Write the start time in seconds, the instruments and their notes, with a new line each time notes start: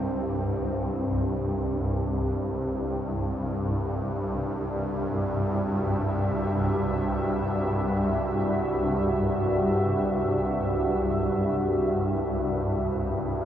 Already playing: synth drone C2 G2, ambient pad C4 G4 D#5
2.52 ambient pad G3
2.94 ambient pad E5
3.93 ambient pad F#4